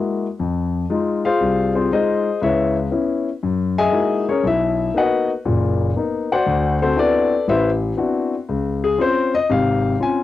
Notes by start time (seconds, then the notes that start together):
Already playing: G#3 A#3 E4 F#4
0.40 F2
0.90 G#3 D#4 F4
1.25 F4 G#4 C5 F5
1.40 C2
1.75 C4 F4 G#4 C5
1.92 G#3 D#4 F4 G#4 C5 D#5
2.42 C#2 E4 B4 C#5 E5
2.91 B3 C#4 E4
3.43 F#2
3.78 G#4 D#5 E5 G#5
3.91 G#3 A#3 D#4 E4 F#4
4.29 C#4 G#4 A#4 C#5
4.43 B1 E4
4.47 E5
4.94 A#3 B3 D#4 F#4 B4 D#5 F#5
5.45 F#1 A#2
5.96 A#3 B3 D#4
6.32 F#4 C5 D5 F#5
6.46 D2
6.82 C4 F#4 A4 C5
6.96 B3 C4 D4 E4 F#4 A4 B4 D5
7.48 A1 E4 B4 C5 E5
7.97 B3 C4 D4 E4 F#4
8.49 C#2
8.84 G#4
8.98 C4 C#4 F4 C5
9.35 D#5
9.50 G#1 C3 F5
10.00 C4 C#4 F4 G#5